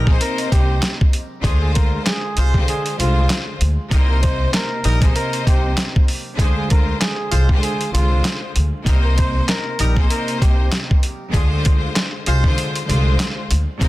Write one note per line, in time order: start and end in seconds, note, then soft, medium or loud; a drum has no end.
0.00 0.16 A#1 loud
0.05 1.05 C3 loud
0.05 1.05 A#3 medium
0.05 1.06 D#4 loud
0.05 0.19 G#4 medium
0.05 1.06 C5 loud
0.05 kick loud
0.20 0.48 A#4 medium
0.20 closed hi-hat medium
0.38 closed hi-hat medium
0.51 0.78 C2 medium
0.51 0.97 G4 medium
0.51 kick medium
0.51 closed hi-hat medium
0.82 snare loud
0.82 clap loud
0.82 closed hi-hat medium
1.01 kick loud
1.13 closed hi-hat medium
1.41 1.96 D2 loud
1.41 2.29 D3 loud
1.41 1.58 F3 medium
1.41 2.29 G#3 loud
1.41 1.58 D4 medium
1.41 2.30 F4 loud
1.41 1.58 G#4 medium
1.41 2.30 C5 loud
1.41 kick loud
1.41 closed hi-hat medium
1.61 1.73 G#4 medium
1.74 2.02 A#4 medium
1.74 kick loud
1.74 closed hi-hat medium
2.06 2.51 G#4 medium
2.06 snare loud
2.06 clap medium
2.06 closed hi-hat medium
2.37 2.63 C2 medium
2.37 2.57 G#3 loud
2.37 2.57 F4 loud
2.37 2.57 C5 loud
2.37 closed hi-hat medium
2.54 2.95 D3 loud
2.54 2.96 G#3 medium
2.54 2.97 F4 medium
2.54 2.66 G4 medium
2.54 2.97 C5 loud
2.54 kick loud
2.68 2.96 G#4 medium
2.68 closed hi-hat medium
2.86 closed hi-hat medium
2.96 3.25 C2 loud
2.96 3.55 D3 medium
2.96 3.56 G#3 loud
2.96 3.56 F4 medium
2.96 3.44 F4 medium
2.96 3.57 C5 loud
2.96 closed hi-hat medium
3.30 snare loud
3.30 clap loud
3.30 closed hi-hat medium
3.61 3.76 D2 loud
3.61 closed hi-hat medium
3.89 4.43 C2 loud
3.89 4.77 C3 loud
3.89 4.07 G3 medium
3.89 4.77 A#3 medium
3.89 4.78 D#4 loud
3.89 4.07 D#4 medium
3.89 4.07 A#4 medium
3.89 4.78 C5 loud
3.89 kick loud
3.89 closed hi-hat medium
4.09 4.21 A#4 medium
4.23 4.50 C5 medium
4.23 kick loud
4.23 closed hi-hat medium
4.53 4.99 A#4 medium
4.53 snare loud
4.53 clap medium
4.53 closed hi-hat medium
4.84 5.10 A#1 loud
4.84 5.04 G3 medium
4.84 5.04 D#4 loud
4.84 5.04 A#4 loud
4.84 closed hi-hat medium
5.00 6.00 C3 loud
5.00 6.00 A#3 medium
5.00 6.01 D#4 loud
5.00 5.14 G#4 medium
5.00 6.01 C5 loud
5.00 kick loud
5.00 closed hi-hat medium
5.16 5.43 A#4 medium
5.16 closed hi-hat medium
5.33 closed hi-hat soft
5.47 5.73 C2 medium
5.47 5.92 G4 medium
5.47 kick medium
5.47 closed hi-hat medium
5.77 snare loud
5.77 clap loud
5.77 closed hi-hat medium
5.96 kick loud
6.08 open hi-hat medium
6.36 6.91 D2 loud
6.36 7.24 D3 loud
6.36 6.54 F3 medium
6.36 7.24 G#3 loud
6.36 6.54 D4 medium
6.36 7.25 F4 medium
6.36 6.54 G#4 medium
6.36 7.25 C5 loud
6.36 kick loud
6.36 closed hi-hat medium
6.56 6.68 G#4 medium
6.70 6.98 A#4 medium
6.70 kick loud
6.70 closed hi-hat medium
7.00 7.46 G#4 medium
7.00 snare loud
7.00 clap loud
7.00 closed hi-hat medium
7.31 7.58 C2 loud
7.31 7.51 G#3 loud
7.31 7.51 F4 loud
7.31 7.51 C5 loud
7.31 closed hi-hat medium
7.49 7.90 D3 loud
7.49 7.91 G#3 medium
7.49 7.92 F4 medium
7.49 7.61 G4 medium
7.49 7.92 C5 loud
7.49 kick loud
7.62 7.90 G#4 medium
7.62 closed hi-hat medium
7.81 closed hi-hat medium
7.91 8.20 C2 medium
7.91 8.50 D3 medium
7.91 8.51 G#3 loud
7.91 8.39 F4 medium
7.91 8.51 F4 medium
7.91 8.52 C5 loud
7.91 closed hi-hat medium
8.25 snare loud
8.25 clap loud
8.25 closed hi-hat medium
8.56 8.71 D2 loud
8.56 closed hi-hat medium
8.84 9.38 C2 loud
8.84 9.72 C3 loud
8.84 9.02 G3 medium
8.84 9.72 A#3 loud
8.84 9.73 D#4 loud
8.84 9.02 D#4 medium
8.84 9.02 A#4 medium
8.84 9.73 C5 loud
8.84 kick loud
8.84 closed hi-hat medium
9.05 9.16 A#4 medium
9.17 9.45 C5 medium
9.17 kick loud
9.17 closed hi-hat medium
9.48 9.94 A#4 medium
9.48 snare loud
9.48 clap medium
9.48 closed hi-hat medium
9.79 10.05 A#1 loud
9.79 9.99 G3 medium
9.79 9.99 D#4 loud
9.79 9.99 A#4 loud
9.79 closed hi-hat medium
9.95 10.94 C3 loud
9.95 10.95 A#3 medium
9.95 10.95 D#4 medium
9.95 10.08 G#4 medium
9.95 10.96 C5 loud
9.95 kick loud
10.10 10.38 A#4 medium
10.10 closed hi-hat medium
10.28 closed hi-hat medium
10.41 10.67 C2 medium
10.41 10.87 G4 medium
10.41 kick medium
10.41 closed hi-hat medium
10.72 snare loud
10.72 clap loud
10.72 closed hi-hat medium
10.91 kick loud
11.03 closed hi-hat medium
11.31 11.86 D2 loud
11.31 12.19 D3 loud
11.31 11.48 F3 medium
11.31 12.19 G#3 loud
11.31 11.48 D4 medium
11.31 12.20 F4 medium
11.31 11.48 G#4 loud
11.31 12.20 C5 loud
11.31 kick loud
11.31 closed hi-hat medium
11.65 kick loud
11.65 closed hi-hat medium
11.96 snare loud
11.96 clap medium
11.96 closed hi-hat medium
12.26 12.53 C2 loud
12.26 12.46 G#3 loud
12.26 12.46 F4 loud
12.26 12.46 C5 loud
12.26 closed hi-hat medium
12.44 12.85 D3 loud
12.44 12.86 G#3 medium
12.44 12.86 F4 loud
12.44 12.87 C5 loud
12.44 kick loud
12.58 closed hi-hat medium
12.76 closed hi-hat medium
12.86 13.15 C2 medium
12.86 13.45 D3 medium
12.86 13.45 G#3 loud
12.86 13.46 F4 medium
12.86 13.46 C5 loud
12.86 closed hi-hat medium
13.20 snare loud
13.20 clap loud
13.20 closed hi-hat medium
13.51 13.65 D2 loud
13.51 closed hi-hat medium
13.79 13.88 C2 loud
13.79 13.88 C3 loud
13.79 13.88 G3 medium
13.79 13.88 A#3 loud
13.79 13.88 D#4 loud
13.79 13.88 D#4 medium
13.79 13.88 A#4 medium
13.79 13.88 C5 loud
13.79 kick loud
13.79 closed hi-hat loud